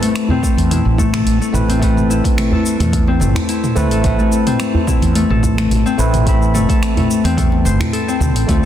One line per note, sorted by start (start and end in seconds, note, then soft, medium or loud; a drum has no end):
0.00 1.50 A3 medium
0.00 0.43 A3 medium
0.00 1.51 C4 medium
0.00 1.51 E4 medium
0.00 1.13 A4 medium
0.00 1.52 B4 medium
0.00 open hi-hat soft
0.00 djembe tone soft
0.00 shaker soft
0.16 finger snap medium
0.16 open hi-hat medium
0.16 shaker soft
0.28 1.69 C4 medium
0.28 mid tom medium
0.28 djembe bass medium
0.43 0.98 A3 medium
0.43 kick medium
0.43 shaker medium
0.57 0.80 E2 medium
0.57 open hi-hat soft
0.57 shaker soft
0.71 2.09 E4 medium
0.71 mid tom medium
0.71 open hi-hat soft
0.71 shaker soft
0.85 1.22 A1 medium
0.85 djembe tone medium
0.98 1.41 A3 loud
0.98 kick loud
0.98 djembe bass medium
0.98 shaker medium
1.14 2.52 A4 medium
1.14 finger snap medium
1.14 mid tom medium
1.14 open hi-hat soft
1.14 shaker soft
1.26 1.38 A1 medium
1.26 open hi-hat medium
1.26 shaker soft
1.41 1.81 A3 medium
1.41 shaker soft
1.53 2.20 A1 medium
1.53 1.78 A3 medium
1.53 1.79 C4 medium
1.53 1.79 E4 medium
1.53 1.79 B4 loud
1.53 mid tom medium
1.53 djembe tone medium
1.53 shaker medium
1.69 3.07 C4 medium
1.69 open hi-hat soft
1.69 djembe tone medium
1.69 shaker soft
1.80 3.72 A3 medium
1.80 2.37 A3 medium
1.80 3.73 C4 medium
1.80 3.74 E4 medium
1.80 kick loud
1.80 open hi-hat soft
1.80 shaker soft
1.84 3.74 B4 medium
1.97 mid tom medium
1.97 djembe tone soft
1.97 shaker soft
2.10 3.48 E4 medium
2.10 djembe slap medium
2.10 shaker medium
2.24 kick loud
2.24 open hi-hat soft
2.24 djembe tone soft
2.24 shaker soft
2.37 2.79 A3 medium
2.37 finger snap medium
2.37 mid tom medium
2.37 open hi-hat medium
2.37 shaker soft
2.51 3.91 A4 medium
2.51 djembe bass medium
2.66 shaker medium
2.80 3.22 E2 medium
2.80 3.20 A3 medium
2.80 mid tom medium
2.80 open hi-hat soft
2.80 shaker soft
2.93 kick loud
2.93 open hi-hat medium
2.93 shaker soft
3.08 4.46 C4 loud
3.08 djembe slap medium
3.20 3.33 G1 loud
3.20 3.76 A3 medium
3.20 mid tom medium
3.20 djembe slap medium
3.20 shaker medium
3.35 finger snap medium
3.35 open hi-hat soft
3.35 djembe bass medium
3.35 shaker soft
3.49 4.87 E4 medium
3.49 open hi-hat medium
3.49 shaker soft
3.64 mid tom medium
3.64 shaker soft
3.75 3.91 D2 medium
3.75 4.00 A3 medium
3.75 4.19 A3 medium
3.75 4.01 C4 medium
3.75 4.01 E4 medium
3.75 4.01 B4 loud
3.75 djembe tone medium
3.75 shaker medium
3.90 4.02 A1 medium
3.90 5.30 A4 medium
3.90 open hi-hat soft
3.90 djembe slap soft
3.90 shaker soft
4.02 4.16 A1 medium
4.02 5.94 A3 medium
4.02 5.95 C4 medium
4.02 5.96 E4 medium
4.02 kick loud
4.02 mid tom medium
4.02 open hi-hat soft
4.02 shaker soft
4.06 5.96 B4 medium
4.19 4.60 A3 medium
4.19 djembe tone soft
4.19 shaker soft
4.31 djembe slap soft
4.31 shaker medium
4.47 5.85 C4 medium
4.47 mid tom medium
4.47 open hi-hat soft
4.47 djembe tone soft
4.47 shaker soft
4.60 5.15 A3 medium
4.60 finger snap medium
4.60 open hi-hat soft
4.60 shaker soft
4.74 djembe bass medium
4.87 6.26 E4 medium
4.87 kick medium
4.87 mid tom medium
4.87 shaker medium
5.02 5.24 E2 medium
5.02 open hi-hat soft
5.02 shaker soft
5.15 5.58 A3 loud
5.15 open hi-hat medium
5.15 shaker soft
5.30 5.67 A1 medium
5.30 6.69 A4 medium
5.30 mid tom medium
5.30 djembe tone medium
5.43 kick loud
5.43 djembe bass medium
5.43 shaker medium
5.58 5.99 A3 medium
5.58 finger snap medium
5.58 open hi-hat soft
5.58 shaker soft
5.70 5.83 A1 medium
5.70 mid tom medium
5.70 open hi-hat medium
5.70 shaker soft
5.86 7.24 C4 loud
5.86 shaker soft
5.98 6.64 A1 medium
5.98 6.23 A3 medium
5.98 6.54 A3 medium
5.98 6.23 C4 medium
5.98 6.24 E4 medium
5.98 6.24 B4 medium
5.98 djembe tone medium
5.98 shaker medium
6.12 mid tom medium
6.12 open hi-hat soft
6.12 djembe tone medium
6.12 shaker soft
6.25 8.17 A3 medium
6.25 8.17 C4 medium
6.25 8.65 E4 medium
6.25 8.18 E4 medium
6.25 kick loud
6.25 open hi-hat soft
6.25 shaker soft
6.29 8.19 B5 medium
6.42 djembe tone soft
6.42 shaker soft
6.54 6.96 A3 medium
6.54 mid tom medium
6.54 djembe slap soft
6.54 shaker medium
6.69 7.92 A4 medium
6.69 kick loud
6.69 open hi-hat soft
6.69 djembe tone soft
6.69 shaker soft
6.83 finger snap medium
6.83 open hi-hat soft
6.83 shaker soft
6.97 7.37 A3 medium
6.97 mid tom medium
6.97 open hi-hat soft
6.97 djembe bass medium
7.11 shaker medium
7.24 7.66 E2 medium
7.24 8.08 C4 loud
7.24 open hi-hat soft
7.24 shaker soft
7.37 8.48 A3 medium
7.37 kick loud
7.37 mid tom medium
7.37 open hi-hat soft
7.37 shaker soft
7.52 djembe slap medium
7.65 7.77 G1 loud
7.65 8.65 C5 medium
7.65 djembe slap medium
7.65 shaker medium
7.80 finger snap medium
7.80 mid tom medium
7.80 open hi-hat soft
7.80 djembe bass medium
7.80 shaker soft
7.93 8.63 A4 medium
7.93 open hi-hat medium
7.93 shaker soft
8.08 8.35 C4 medium
8.08 shaker soft
8.20 8.35 D2 medium
8.20 mid tom medium
8.20 djembe tone medium
8.20 shaker medium
8.35 8.46 A1 medium
8.35 8.65 C4 medium
8.35 open hi-hat soft
8.35 djembe slap soft
8.35 shaker soft
8.47 8.61 D2 medium
8.47 8.65 A3 medium
8.47 8.65 A3 loud
8.47 8.65 D4 medium
8.47 8.65 F4 medium
8.47 8.65 C5 medium
8.47 kick loud
8.47 open hi-hat soft
8.47 shaker soft